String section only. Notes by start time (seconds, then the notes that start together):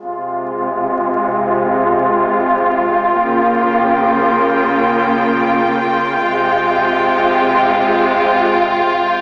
0.04 C3 G#3 F4
3.12 C#3 A#3
6.20 C3 G#3 F4